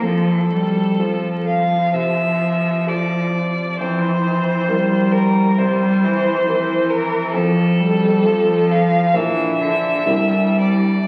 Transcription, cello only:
\new Staff \with { instrumentName = "Cello" } { \clef bass \time 4/4 \key f \major \tempo 4 = 66 f8 g8 f2. | e8 e8 g4 g8 e8 e4 | f8 g8 f4 e8 d8 g4 | }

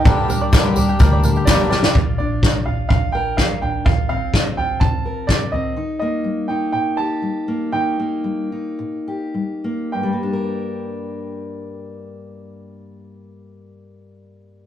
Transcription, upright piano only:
\new Staff \with { instrumentName = "Upright piano" } { \time 4/4 \key g \minor \tempo 4 = 123 g''2. d''8 d''8~ | d''8 d''4 f''8 f''8 g''8 f''8 g''8 | f''8 f''4 g''8 a''4 d''8 ees''8~ | ees''8 ees''4 g''8 g''8 a''4. |
g''2.~ g''8 r8 | g''1~ | g''1 | }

